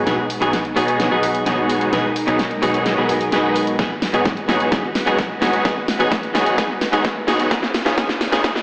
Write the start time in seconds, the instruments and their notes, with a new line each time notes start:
0.06 analog synth bass B1, clean electric guitar B2 F#3 B3 D#4 G#4, string section G#3 B3 D#4, supersaw synth B3 D#4 F#4 G#4 B4, snare, closed hi-hat
0.30 open hi-hat
0.41 analog synth bass B1, clean electric guitar B2 F#3 B3 D#4 G#4, supersaw synth B3 D#4 F#4 G#4 C#5, closed hi-hat
0.53 snare, closed hi-hat
0.65 closed hi-hat
0.76 analog synth bass B1, clean electric guitar B2 F#3 B3 D#4 G#4, supersaw synth B3 D#4 F#4 G#4 C#5, open hi-hat
0.88 closed hi-hat
1.00 snare, closed hi-hat
1.11 analog synth bass B1, clean electric guitar B2 F#3 B3 D#4 G#4, supersaw synth B3 D#4 F#4 G#4 B4
1.23 open hi-hat
1.35 closed hi-hat
1.46 analog synth bass B1, clean electric guitar B2 F#3 B3 D#4 G#4, supersaw synth B3 D#4 F#4 G#4 C#5, snare, closed hi-hat
1.70 open hi-hat
1.81 closed hi-hat
1.92 analog synth bass B1, clean electric guitar B2 F#3 B3 D#4 G#4, supersaw synth B3 D#4 F#4 G#4 B4, string section A#4, snare, closed hi-hat
2.16 open hi-hat
2.27 analog synth bass B1, clean electric guitar B2 F#3 B3 D#4 G#4, supersaw synth B3 D#4 F#4 G#4 C#5, closed hi-hat
2.39 snare, closed hi-hat
2.51 closed hi-hat
2.62 analog synth bass B1, clean electric guitar B2 F#3 B3 D#4 G#4, supersaw synth B3 D#4 F#4 G#4 C#5, open hi-hat
2.74 closed hi-hat
2.86 snare, closed hi-hat
2.97 analog synth bass B1, clean electric guitar B2 F#3 B3 D#4 G#4, supersaw synth B3 D#4 F#4 G#4 B4
3.09 open hi-hat
3.21 closed hi-hat
3.32 analog synth bass B1, clean electric guitar B2 F#3 B3 D#4 G#4, supersaw synth B3 D#4 F#4 G#4 B4, snare, closed hi-hat
3.56 open hi-hat
3.67 closed hi-hat
3.78 analog synth bass G#1, clean electric guitar G#2 F#3 B3 D#4 G#4, supersaw synth B3 D#4 F#4 G#4 B4, string section F#4 B4, kick, snare, closed hi-hat, riser
4.02 snare, open hi-hat
4.13 analog synth bass G#1, clean electric guitar G#2 F#3 B3 D#4 G#4, supersaw synth B3 D#4 F#4 G#4 C#5, closed hi-hat
4.25 kick, snare, closed hi-hat
4.37 closed hi-hat
4.48 analog synth bass G#1, clean electric guitar G#2 F#3 B3 D#4 G#4, supersaw synth B3 D#4 F#4 G#4 C#5, snare, open hi-hat
4.60 closed hi-hat
4.71 analog synth bass G#1, clean electric guitar G#2 F#3 B3 D#4 G#4, supersaw synth B3 D#4 F#4 G#4 B4, kick, snare, closed hi-hat
4.95 snare, open hi-hat
5.06 analog synth bass G#1, clean electric guitar G#2 F#3 B3 D#4 G#4, supersaw synth B3 D#4 F#4 G#4 C#5, closed hi-hat
5.18 kick, snare, closed hi-hat
5.41 analog synth bass G#1, clean electric guitar G#2 F#3 B3 D#4 G#4, supersaw synth B3 D#4 F#4 G#4 C#5, snare, open hi-hat
5.53 closed hi-hat
5.64 analog synth bass G#1, clean electric guitar G#2 F#3 B3 D#4 G#4, supersaw synth B3 D#4 F#4 G#4 B4, kick, snare, closed hi-hat
5.88 snare, open hi-hat
5.99 analog synth bass G#1, clean electric guitar G#2 F#3 B3 D#4 G#4, supersaw synth B3 D#4 F#4 G#4 C#5, closed hi-hat
6.12 kick, snare, closed hi-hat
6.23 closed hi-hat
6.34 analog synth bass G#1, clean electric guitar G#2 F#3 B3 D#4 G#4, supersaw synth B3 D#4 F#4 G#4 C#5, snare, open hi-hat
6.46 closed hi-hat
6.57 analog synth bass G#1, clean electric guitar G#2 F#3 B3 D#4 G#4, supersaw synth B3 D#4 F#4 G#4 B4, kick, snare, closed hi-hat
6.81 snare, open hi-hat
6.92 analog synth bass G#1, clean electric guitar G#2 F#3 B3 D#4 G#4, supersaw synth B3 D#4 F#4 G#4 C#5, closed hi-hat
7.05 kick, snare, closed hi-hat
7.27 analog synth bass G#1, clean electric guitar G#2 F#3 B3 D#4 G#4, supersaw synth B3 D#4 F#4 G#4 C#5, snare, open hi-hat
7.39 closed hi-hat
7.50 analog synth bass C#2, clean electric guitar G#2 F3 B3 D#4 G#4, string section C#3 B3 F4, supersaw synth B3 D#4 F4 G#4 B4, kick, snare, closed hi-hat
7.63 snare
7.74 snare, open hi-hat
7.85 analog synth bass C#2, clean electric guitar G#2 F3 B3 D#4 G#4, supersaw synth B3 D#4 F4 G#4 C#5, snare, closed hi-hat
7.97 analog synth bass C#2, clean electric guitar G#2 F3 B3 D#4 G#4, supersaw synth B3 D#4 F4 G#4 B4, kick, snare, closed hi-hat
8.09 snare, closed hi-hat
8.21 snare, open hi-hat
8.32 analog synth bass C#2, clean electric guitar G#2 F3 B3 D#4 G#4, supersaw synth B3 D#4 F4 G#4 C#5, snare, closed hi-hat
8.43 analog synth bass C#2, clean electric guitar G#2 F3 B3 D#4 G#4, supersaw synth B3 D#4 F4 G#4 B4, kick, snare, closed hi-hat
8.56 snare